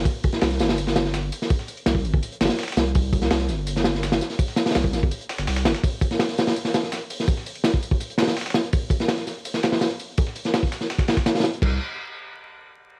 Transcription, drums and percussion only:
0.05 kick, open hi-hat, tambourine
0.24 kick, open hi-hat, tambourine
0.33 snare, closed hi-hat
0.41 snare, open hi-hat
0.51 snare, closed hi-hat
0.59 snare, open hi-hat, tambourine
0.69 snare, open hi-hat
0.78 open hi-hat, tambourine
0.87 snare
0.96 snare, open hi-hat, tambourine
1.05 snare
1.14 snare, open hi-hat, tambourine
1.32 open hi-hat, tambourine
1.42 snare
1.50 kick, open hi-hat, tambourine
1.59 snare
1.68 open hi-hat, tambourine
1.77 closed hi-hat
1.86 snare, open hi-hat, tambourine
1.95 kick
2.05 open hi-hat, tambourine
2.13 kick
2.22 open hi-hat, tambourine
2.32 closed hi-hat
2.41 snare, open hi-hat, tambourine
2.44 snare, open hi-hat
2.49 snare, closed hi-hat, open hi-hat
2.58 snare, open hi-hat
2.63 snare, open hi-hat
2.68 snare, open hi-hat
2.72 snare, open hi-hat
2.77 snare, open hi-hat, tambourine
2.86 closed hi-hat
2.95 kick, open hi-hat, tambourine
3.13 kick, open hi-hat, tambourine
3.22 snare, closed hi-hat
3.31 snare, open hi-hat
3.39 snare, closed hi-hat
3.49 snare, open hi-hat, tambourine
3.67 open hi-hat, tambourine
3.76 snare
3.84 snare, open hi-hat, tambourine
3.95 snare
4.03 snare, open hi-hat, tambourine
4.12 snare, open hi-hat
4.21 snare, tambourine
4.30 snare, open hi-hat
4.39 kick, open hi-hat, tambourine
4.48 snare
4.56 snare, open hi-hat, tambourine
4.66 snare, closed hi-hat, open hi-hat
4.70 snare, open hi-hat
4.75 snare, open hi-hat, tambourine
4.84 kick
4.93 snare, open hi-hat, tambourine
5.03 kick
5.11 open hi-hat, tambourine
5.21 closed hi-hat
5.29 snare, open hi-hat
5.39 snare, open hi-hat
5.47 snare, open hi-hat
5.57 snare, open hi-hat
5.65 snare, open hi-hat
5.75 snare, closed hi-hat, open hi-hat
5.84 kick, open hi-hat, tambourine
6.01 kick, open hi-hat, tambourine
6.11 snare, closed hi-hat
6.19 snare, open hi-hat
6.28 snare, closed hi-hat
6.38 snare, open hi-hat, tambourine
6.47 snare, open hi-hat
6.56 open hi-hat, tambourine
6.65 snare
6.74 snare, open hi-hat, tambourine
6.83 snare
6.92 snare, open hi-hat, tambourine
7.10 open hi-hat, tambourine
7.20 snare
7.28 kick, open hi-hat, tambourine
7.37 snare
7.46 open hi-hat, tambourine
7.55 closed hi-hat
7.64 snare, open hi-hat, tambourine
7.74 kick
7.82 open hi-hat, tambourine
7.91 kick
8.00 open hi-hat, tambourine
8.10 closed hi-hat
8.18 snare, open hi-hat, tambourine
8.22 snare, open hi-hat
8.27 snare, closed hi-hat, open hi-hat
8.37 snare, open hi-hat
8.41 snare, open hi-hat
8.46 snare, open hi-hat
8.50 snare, open hi-hat
8.54 snare, open hi-hat, tambourine
8.64 closed hi-hat
8.73 kick, open hi-hat, tambourine
8.90 kick, open hi-hat, tambourine
9.00 snare, closed hi-hat
9.09 snare, open hi-hat
9.17 snare, closed hi-hat
9.27 snare, open hi-hat, tambourine
9.45 open hi-hat, tambourine
9.54 snare
9.63 snare, open hi-hat
9.72 snare, open hi-hat
9.81 snare, open hi-hat, tambourine
9.91 closed hi-hat
9.99 open hi-hat, tambourine
10.18 kick, open hi-hat, tambourine
10.27 snare
10.36 open hi-hat, tambourine
10.45 snare, closed hi-hat
10.54 snare, open hi-hat, tambourine
10.63 kick
10.72 snare, open hi-hat, tambourine
10.81 snare
10.90 snare, open hi-hat
10.99 kick, snare, open hi-hat
11.08 snare, open hi-hat
11.17 kick, snare, open hi-hat
11.26 snare, open hi-hat, tambourine
11.35 snare, open hi-hat
11.39 snare, open hi-hat
11.44 snare, open hi-hat, tambourine
11.54 closed hi-hat
11.62 kick, crash

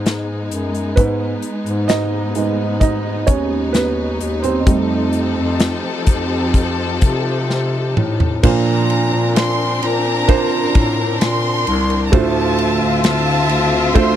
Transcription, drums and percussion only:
0.06 snare, closed hi-hat
0.51 closed hi-hat
0.74 closed hi-hat
0.97 kick, closed hi-hat
1.42 closed hi-hat
1.66 closed hi-hat
1.89 snare, closed hi-hat
2.35 closed hi-hat
2.81 kick, closed hi-hat
3.27 kick, closed hi-hat
3.74 snare, closed hi-hat
4.21 closed hi-hat
4.44 closed hi-hat
4.67 kick, closed hi-hat
5.13 closed hi-hat
5.60 snare, closed hi-hat
6.07 kick, closed hi-hat
6.54 kick, closed hi-hat
7.01 kick, closed hi-hat
7.50 snare
7.97 mid tom
8.20 floor tom
8.43 kick, crash
8.90 ride
9.36 snare, ride
9.83 ride
10.29 kick, ride
10.75 kick, ride
11.21 snare, ride
11.67 ride
11.90 ride
12.13 kick, ride
12.58 ride
13.04 snare, ride
13.49 ride
13.95 kick, ride

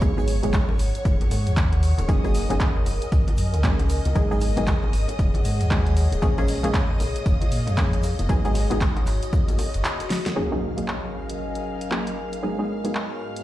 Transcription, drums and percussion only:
0.01 kick, closed hi-hat, high bongo, shaker
0.18 shaker
0.28 closed hi-hat, open hi-hat, shaker
0.43 closed hi-hat, high bongo, high conga, shaker
0.53 kick, snare, clap, closed hi-hat, shaker
0.69 high bongo, low conga
0.79 snare, closed hi-hat, open hi-hat, shaker
0.95 closed hi-hat, shaker
1.05 kick, closed hi-hat, high bongo, shaker
1.21 closed hi-hat, high conga
1.31 closed hi-hat, open hi-hat, high bongo, shaker
1.47 snare, closed hi-hat, shaker
1.57 kick, snare, clap, closed hi-hat, high conga, shaker
1.72 snare, closed hi-hat, high bongo
1.83 closed hi-hat, open hi-hat, shaker
1.98 closed hi-hat, high bongo, high conga, shaker
2.09 kick, closed hi-hat, shaker
2.24 closed hi-hat, high bongo, shaker
2.35 open hi-hat, shaker
2.50 closed hi-hat, high bongo, high conga, shaker
2.60 kick, snare, clap, closed hi-hat, shaker
2.76 low conga
2.86 closed hi-hat, open hi-hat, high bongo, high conga, shaker
3.01 closed hi-hat, shaker
3.12 kick, closed hi-hat, high bongo, shaker
3.28 closed hi-hat, high conga
3.37 closed hi-hat, open hi-hat, shaker
3.54 closed hi-hat, high bongo, shaker
3.63 kick, snare, clap, closed hi-hat, high conga, shaker
3.79 closed hi-hat, high bongo
3.89 closed hi-hat, open hi-hat, shaker
4.05 closed hi-hat, high conga, shaker
4.15 kick, closed hi-hat, high bongo, shaker
4.31 shaker
4.41 closed hi-hat, open hi-hat, high bongo, shaker
4.57 closed hi-hat, high conga, shaker
4.67 kick, snare, clap, closed hi-hat, shaker
4.83 high bongo, low conga
4.93 snare, closed hi-hat, open hi-hat, shaker
5.08 closed hi-hat, high bongo, shaker
5.19 kick, closed hi-hat, shaker
5.34 closed hi-hat, high conga
5.45 closed hi-hat, open hi-hat, high bongo, shaker
5.61 snare, closed hi-hat, shaker
5.71 kick, snare, clap, closed hi-hat, high bongo, high conga, shaker
5.86 snare, closed hi-hat
5.97 closed hi-hat, open hi-hat, shaker
6.12 closed hi-hat, high bongo, high conga, shaker
6.22 kick, closed hi-hat, shaker
6.38 closed hi-hat, high bongo, shaker
6.48 open hi-hat, shaker
6.63 closed hi-hat, high conga, shaker
6.74 kick, snare, clap, closed hi-hat, high bongo, shaker
6.90 low conga
7.00 closed hi-hat, open hi-hat, high bongo, high conga, shaker
7.16 closed hi-hat, shaker
7.26 kick, closed hi-hat, shaker
7.41 closed hi-hat, high bongo, high conga
7.52 closed hi-hat, open hi-hat, shaker
7.67 closed hi-hat, high bongo, shaker
7.77 kick, snare, clap, closed hi-hat, high conga, shaker
7.93 closed hi-hat
8.03 closed hi-hat, open hi-hat, high bongo, shaker
8.19 closed hi-hat, high conga, shaker
8.29 kick, closed hi-hat, high bongo, shaker
8.45 closed hi-hat, shaker
8.55 snare, closed hi-hat, open hi-hat, shaker
8.71 closed hi-hat, high bongo, high conga, shaker
8.81 kick, snare, clap, closed hi-hat, shaker
8.96 closed hi-hat, high bongo, low conga
9.07 clap, closed hi-hat, open hi-hat, shaker
9.22 closed hi-hat, shaker
9.33 kick, closed hi-hat, high bongo, shaker
9.48 closed hi-hat, high conga, shaker
9.59 closed hi-hat, open hi-hat, high bongo, shaker
9.74 snare, closed hi-hat, shaker
9.85 snare, clap, closed hi-hat, high conga, shaker
10.00 snare, closed hi-hat, high bongo, shaker
10.10 snare, closed hi-hat, open hi-hat, shaker
10.26 snare, closed hi-hat, high bongo, high conga, shaker
10.78 closed hi-hat
10.88 clap
11.30 closed hi-hat
11.55 closed hi-hat
11.81 closed hi-hat
11.91 clap
12.07 closed hi-hat
12.33 closed hi-hat
12.85 closed hi-hat
12.95 clap
13.36 closed hi-hat

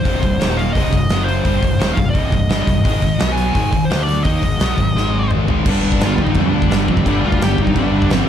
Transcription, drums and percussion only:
0.05 kick, open hi-hat
0.23 kick, open hi-hat
0.41 snare, open hi-hat
0.59 open hi-hat
0.75 kick, open hi-hat
0.93 kick, open hi-hat
1.10 snare, open hi-hat
1.29 open hi-hat
1.45 kick, open hi-hat
1.62 kick, open hi-hat
1.81 snare, open hi-hat
1.97 kick, open hi-hat
2.15 kick, open hi-hat
2.32 kick, open hi-hat
2.50 snare, open hi-hat
2.67 kick, open hi-hat
2.85 kick, open hi-hat
3.02 kick, open hi-hat
3.20 snare, open hi-hat
3.38 open hi-hat
3.55 kick, open hi-hat
3.73 kick, open hi-hat
3.91 snare, open hi-hat
4.08 open hi-hat
4.25 kick, open hi-hat
4.43 kick, open hi-hat
4.60 snare, open hi-hat
4.78 kick, open hi-hat
4.97 snare
5.31 mid tom
5.48 floor tom
5.66 kick, crash, china
5.92 kick
6.01 snare, china
6.18 kick
6.27 kick
6.34 kick, china
6.62 kick
6.71 snare, china
6.88 kick
6.97 kick
7.06 kick, china
7.32 kick
7.41 snare, china
7.58 kick
7.67 kick
7.76 kick, china
8.02 kick
8.10 snare, china

